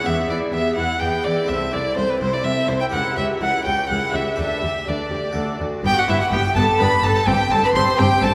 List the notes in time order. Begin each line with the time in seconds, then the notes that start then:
0.02 E2 B3 E4 G4 E5
0.07 E2 G4
0.29 E2 E4 B4 D5
0.53 E2 B3 G4 E5
0.76 E2 E4 B4 F#5
0.99 E2 B3 G4 G5
1.24 E2 E4 B4 D5
1.44 A3 C4 E4 A4
1.49 C2 A4 E5
1.72 C2 E4 C5 D5
1.96 C2 C4 A4 C5
2.10 B4
2.19 C2 E4 C5
2.33 D5
2.43 C2 C4 A4 E5
2.67 C2 E4 C5
2.80 G5
2.90 C#2 E4 G4 A#4 F#5
3.15 C#2 G4 C#5 E5
3.40 C#2 E4 A#4 F#5
3.64 C#2 G4 C#5 G5
3.88 C#2 E4 A#4 F#5
4.13 C#2 G4 C#5 E5
4.36 D2 D4 G4 B4 E5
4.62 D2 G4 D5
4.87 D2 D4 B4 D5
5.10 D2 G4 D5
5.31 A3 D4 F#4 A4
5.36 D2
5.60 D2 F#4 D5
5.84 G1 G2 B3 G4 G5
5.96 F#4 G4 F#5
6.08 G1 G2 B3 E4 B4 E5
6.20 F#4 G4 F#5
6.32 G1 G2 B3 D4 G4 G5
6.44 G4
6.55 G1 G2 B3 A4 B4 A5
6.68 G4
6.79 G1 G2 B3 D4 B4 B5
6.92 G4
7.03 G1 G2 B3 A4 B4 A5
7.16 G4
7.26 G1 G2 C4 G4 G5
7.39 G4
7.50 G1 G2 C4 A4 C5 A5
7.63 G4 B4 B5
7.74 G1 G2 C4 E4 C5 C6
7.88 G4
7.98 G1 G2 C4 G4 C5 G5
8.12 G4
8.22 G1 G2 C4 E4 A4 A5